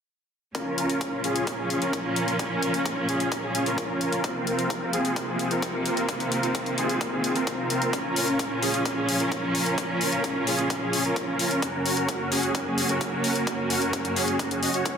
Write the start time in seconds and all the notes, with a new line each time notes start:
0.55 A#2 F3 C#4 F4 A#4, kick, closed hi-hat
0.78 closed hi-hat
0.90 closed hi-hat
1.01 kick, closed hi-hat
1.24 C#4 F4 G#4, closed hi-hat
1.36 closed hi-hat
1.47 C#4 F4 A#4, kick, closed hi-hat
1.59 C#4 F4 G#4
1.70 closed hi-hat
1.82 C#4 F4 A#4, closed hi-hat
1.93 kick, closed hi-hat
2.16 closed hi-hat
2.28 closed hi-hat
2.39 C#4 F4 A#4, kick, closed hi-hat
2.62 closed hi-hat
2.74 closed hi-hat
2.86 kick, closed hi-hat
3.08 C#4 F4 G#4, closed hi-hat
3.20 closed hi-hat
3.32 C#4 F4 A#4, kick, closed hi-hat
3.43 C#4 F4 G#4
3.55 closed hi-hat
3.66 C#4 F4 A#4, closed hi-hat
3.78 kick, closed hi-hat
4.01 closed hi-hat
4.12 closed hi-hat
4.24 C3 F3 A#3 C4 F4 A#4, kick, closed hi-hat
4.47 closed hi-hat
4.59 closed hi-hat
4.70 kick, closed hi-hat
4.93 C4 F4 G#4, closed hi-hat
5.05 closed hi-hat
5.16 C4 F4 A#4, kick, closed hi-hat
5.28 C4 F4 G#4
5.39 closed hi-hat
5.51 C4 F4 A#4, closed hi-hat
5.62 kick, closed hi-hat
5.86 closed hi-hat
5.97 closed hi-hat
6.09 D#3 C4 F4 A#4, kick, closed hi-hat
6.20 closed hi-hat
6.32 closed hi-hat
6.43 closed hi-hat
6.55 kick, closed hi-hat
6.66 closed hi-hat
6.78 C4 F4 G#4, closed hi-hat
6.89 closed hi-hat
7.01 C4 F4 A#4, kick, closed hi-hat
7.12 C4 F4 G#4
7.24 closed hi-hat
7.35 C4 F4 A#4, closed hi-hat
7.47 kick, closed hi-hat
7.70 closed hi-hat
7.82 closed hi-hat
7.93 A#2 F3 C#4 F4 A#4, kick, closed hi-hat
8.16 open hi-hat
8.28 closed hi-hat
8.39 kick, closed hi-hat
8.62 C#4 F4 G#4, open hi-hat
8.74 closed hi-hat
8.85 C#4 F4 A#4, kick, closed hi-hat
8.97 C#4 F4 G#4
9.09 open hi-hat
9.20 C#4 F4 A#4, closed hi-hat
9.32 kick, closed hi-hat
9.55 open hi-hat
9.66 closed hi-hat
9.78 C#4 F4 A#4, kick, closed hi-hat
10.01 open hi-hat
10.12 closed hi-hat
10.24 kick, closed hi-hat
10.47 C#4 F4 G#4, open hi-hat
10.59 closed hi-hat
10.70 C#4 F4 A#4, kick, closed hi-hat
10.82 C#4 F4 G#4
10.93 open hi-hat
11.05 C#4 F4 A#4, closed hi-hat
11.16 kick, closed hi-hat
11.39 open hi-hat
11.51 closed hi-hat
11.62 F#2 C#3 A#3 C#4 F#4 A#4, kick, closed hi-hat
11.86 open hi-hat
11.97 closed hi-hat
12.09 kick, closed hi-hat
12.32 C#4 F#4 G#4, open hi-hat
12.43 closed hi-hat
12.55 C#4 F#4 A#4, kick, closed hi-hat
12.66 C#4 F#4 G#4
12.78 open hi-hat
12.89 C#4 F#4 A#4, closed hi-hat
13.01 kick, closed hi-hat
13.24 open hi-hat
13.36 closed hi-hat
13.47 C#4 F#4 A#4, kick, closed hi-hat
13.70 open hi-hat
13.82 closed hi-hat
13.93 kick, closed hi-hat
14.05 closed hi-hat
14.16 C#4 F#4 G#4, open hi-hat
14.28 closed hi-hat
14.39 C#4 F#4 A#4, kick, closed hi-hat
14.51 C#4 F#4 G#4, closed hi-hat
14.62 C#4 F#4 D#5, open hi-hat
14.74 C#4 F#4 C#5, closed hi-hat
14.86 kick, closed hi-hat